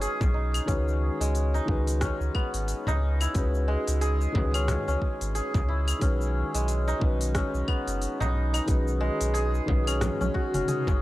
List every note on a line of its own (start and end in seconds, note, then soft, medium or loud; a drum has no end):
0.00 0.63 D#3 medium
0.00 0.64 G#3 medium
0.00 0.73 G#3 medium
0.00 1.15 B3 medium
0.00 0.67 C#4 medium
0.00 0.34 D#4 medium
0.00 0.69 F#4 medium
0.00 3.04 G#4 medium
0.00 0.70 B4 loud
0.00 open hi-hat soft
0.00 shaker medium
0.21 0.60 B1 loud
0.21 kick loud
0.21 frame drum medium
0.21 shaker soft
0.34 1.54 D#4 medium
0.54 open hi-hat medium
0.54 claves medium
0.54 shaker medium
0.66 1.10 C#2 loud
0.66 1.64 D#3 medium
0.66 1.64 G#3 medium
0.66 2.01 C#4 medium
0.66 1.64 C#4 medium
0.66 1.65 F#4 medium
0.66 kick loud
0.66 open hi-hat soft
0.66 shaker medium
0.70 1.66 B4 medium
0.88 shaker soft
1.21 1.60 C#2 medium
1.21 3.67 G#3 medium
1.21 open hi-hat soft
1.21 shaker medium
1.35 open hi-hat soft
1.35 shaker medium
1.54 2.87 D#4 medium
1.54 shaker soft
1.66 2.10 C#2 loud
1.66 3.30 D#3 medium
1.66 3.31 G#3 medium
1.66 3.31 C#4 medium
1.66 3.32 F#4 medium
1.66 kick loud
1.70 3.32 B4 medium
1.87 open hi-hat soft
1.87 shaker medium
2.01 4.54 C#4 medium
2.01 kick loud
2.01 cross-stick medium
2.01 open hi-hat soft
2.01 shaker medium
2.20 2.30 C#2 medium
2.20 shaker soft
2.34 6.49 B3 medium
2.34 kick medium
2.34 claves medium
2.54 2.74 G#1 medium
2.54 open hi-hat medium
2.54 shaker medium
2.68 open hi-hat soft
2.68 shaker soft
2.87 3.27 C#2 medium
2.87 3.27 D#4 loud
2.87 frame drum medium
2.87 shaker soft
3.21 5.68 E4 medium
3.21 open hi-hat soft
3.21 claves medium
3.21 shaker medium
3.34 3.77 C#2 loud
3.34 4.31 G#3 medium
3.34 4.31 C#4 medium
3.34 4.32 F#4 medium
3.34 4.32 B4 medium
3.34 kick loud
3.34 open hi-hat soft
3.34 shaker soft
3.54 shaker soft
3.68 6.06 G#3 loud
3.88 4.27 C#2 medium
3.88 open hi-hat soft
3.88 shaker medium
4.01 5.34 G#4 loud
4.01 open hi-hat soft
4.01 shaker soft
4.21 shaker soft
4.32 4.77 C#2 loud
4.32 5.97 D#3 medium
4.32 5.97 G#3 medium
4.32 5.98 C#4 medium
4.32 5.98 F#4 medium
4.32 kick loud
4.32 frame drum medium
4.37 5.99 B4 loud
4.54 4.87 C#4 medium
4.54 open hi-hat medium
4.54 claves medium
4.54 shaker medium
4.68 cross-stick medium
4.68 open hi-hat soft
4.68 frame drum medium
4.68 shaker medium
4.88 4.97 C#2 medium
4.88 6.02 C#4 medium
4.88 shaker soft
5.02 kick medium
5.21 5.41 G#1 loud
5.21 open hi-hat medium
5.21 shaker medium
5.35 8.38 G#4 medium
5.35 open hi-hat soft
5.35 shaker soft
5.54 5.94 C#2 loud
5.54 kick loud
5.54 frame drum medium
5.54 shaker soft
5.69 6.94 E4 medium
5.88 open hi-hat medium
5.88 claves medium
5.88 shaker medium
5.99 6.44 B1 loud
5.99 6.97 D#3 medium
5.99 6.98 G#3 medium
5.99 6.98 C#4 medium
5.99 7.34 C#4 medium
5.99 6.99 F#4 medium
5.99 kick loud
5.99 open hi-hat soft
5.99 shaker medium
6.03 6.99 B4 medium
6.21 shaker soft
6.55 6.94 B1 medium
6.55 8.99 G#3 medium
6.55 open hi-hat medium
6.55 shaker medium
6.68 open hi-hat soft
6.68 shaker medium
6.88 8.20 D#4 loud
6.88 shaker soft
6.99 7.44 B1 loud
6.99 8.64 D#3 medium
6.99 8.64 G#3 medium
6.99 8.65 C#4 medium
6.99 8.65 F#4 medium
6.99 kick loud
7.04 8.66 B4 loud
7.21 open hi-hat medium
7.21 shaker medium
7.35 9.87 C#4 medium
7.35 kick loud
7.35 cross-stick medium
7.35 open hi-hat soft
7.35 shaker medium
7.54 7.63 B1 medium
7.54 shaker soft
7.68 11.02 B3 medium
7.68 kick medium
7.68 claves medium
7.87 8.07 F#1 loud
7.87 open hi-hat soft
7.87 shaker medium
8.02 open hi-hat soft
8.02 shaker medium
8.20 8.60 B1 loud
8.20 8.53 D#4 loud
8.20 frame drum medium
8.20 shaker soft
8.53 11.02 D#4 medium
8.53 open hi-hat soft
8.53 claves medium
8.53 shaker medium
8.66 9.10 B1 loud
8.66 9.64 D#3 medium
8.66 9.64 G#3 medium
8.66 9.65 C#4 medium
8.66 9.65 F#4 medium
8.66 9.66 B4 medium
8.66 kick loud
8.66 open hi-hat soft
8.66 shaker medium
8.88 shaker soft
9.01 11.00 G#3 loud
9.21 9.60 B1 medium
9.21 open hi-hat medium
9.21 shaker medium
9.34 10.68 G#4 loud
9.34 open hi-hat soft
9.34 shaker medium
9.54 shaker soft
9.66 10.10 B1 loud
9.66 11.02 D#3 medium
9.66 11.02 G#3 medium
9.66 11.02 C#4 medium
9.66 11.02 F#4 medium
9.66 11.02 B4 loud
9.66 kick loud
9.66 frame drum medium
9.87 10.20 C#4 medium
9.87 open hi-hat medium
9.87 claves medium
9.87 shaker medium
10.01 cross-stick medium
10.01 open hi-hat soft
10.01 high tom medium
10.01 frame drum medium
10.01 shaker medium
10.21 10.30 B1 medium
10.21 10.54 C#4 medium
10.21 high tom medium
10.21 shaker soft
10.34 11.02 F#4 medium
10.34 kick medium
10.54 10.63 F#1 loud
10.54 10.87 C#4 medium
10.54 open hi-hat medium
10.54 mid tom medium
10.54 shaker medium
10.68 11.02 G#4 medium
10.68 open hi-hat soft
10.68 mid tom medium
10.68 shaker medium
10.87 11.02 F#1 loud
10.87 11.02 C#4 medium
10.87 kick loud
10.87 frame drum medium
10.87 shaker soft